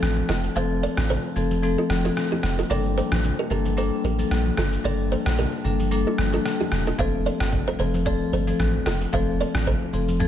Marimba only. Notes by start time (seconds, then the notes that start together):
0.55 F3 A3 C4 A4
1.36 F3 A3 C4 A4
1.63 F3 A3 C4 A4
2.04 F3 A3 C4 A4
2.70 G3 A#3 D4 A4
3.50 G3 A#3 D4 A4
3.77 G3 A#3 D4 A4
4.18 G3 A#3 D4 A4
4.84 G3 A#3 D4 A4
5.65 G3 A#3 D4 A4
5.91 G3 A#3 D4 A4
6.33 G3 A#3 D4 A4
6.98 F3 A3 C4 A4
7.79 F3 A3 C4 A4
8.06 F3 A3 C4 A4
8.47 F3 A3 C4 A4
9.13 F3 A3 C4 A4
9.93 F3 A3 C4 A4
10.20 F3 A3 C4 A4